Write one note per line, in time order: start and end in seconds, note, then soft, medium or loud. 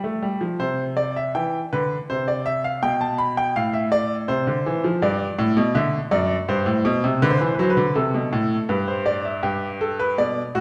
0.00 0.22 A3 medium
0.00 0.18 D5 medium
0.23 0.40 G3 medium
0.41 0.59 F3 medium
0.60 1.32 C3 medium
0.60 0.83 C5 medium
0.97 1.15 D5 medium
1.16 1.34 E5 medium
1.35 1.58 E3 medium
1.35 1.58 G5 medium
1.73 1.95 D3 medium
1.73 1.95 B4 medium
2.10 2.80 C3 medium
2.10 2.27 C5 medium
2.28 2.45 D5 medium
2.46 2.63 E5 loud
2.64 2.82 F5 medium
2.83 3.53 B2 medium
2.83 3.00 G5 medium
3.01 3.18 A5 medium
3.18 3.36 B5 medium
3.37 3.54 G5 medium
3.56 4.26 A2 medium
3.56 3.73 F5 medium
3.73 3.91 E5 medium
3.92 4.14 D5 medium
4.28 4.46 C3 medium
4.28 4.99 C5 medium
4.47 4.64 D3 medium
4.66 4.83 E3 medium
4.84 5.01 F3 medium
5.02 5.24 G2 medium
5.02 5.73 D5 medium
5.39 5.56 A2 loud
5.57 5.74 B2 loud
5.75 5.97 D3 medium
5.75 5.97 E5 medium
6.11 6.34 F#2 loud
6.11 6.34 D5 medium
6.48 6.66 G2 medium
6.48 7.19 C5 medium
6.66 6.84 A2 medium
6.85 7.02 B2 loud
7.04 7.21 C3 loud
7.22 7.39 D3 loud
7.22 7.29 B4 medium
7.30 7.37 C5 medium
7.38 7.58 E3 medium
7.38 7.45 B4 medium
7.46 7.53 C5 medium
7.54 7.61 B4 medium
7.59 7.76 F#3 loud
7.59 7.69 C5 medium
7.70 7.94 B4 medium
7.77 7.94 D3 medium
7.95 8.13 C3 medium
7.95 8.67 A4 medium
8.14 8.32 B2 medium
8.33 8.55 A2 medium
8.69 9.41 G2 medium
8.69 8.87 B4 medium
8.88 9.05 C5 medium
9.06 9.24 D5 medium
9.25 9.43 E5 medium
9.43 10.15 G2 medium
9.43 9.66 G4 medium
9.81 9.98 A4 medium
10.00 10.17 B4 medium
10.18 10.41 B2 medium
10.18 10.41 D5 medium
10.55 10.61 A2 medium
10.55 10.61 F#4 loud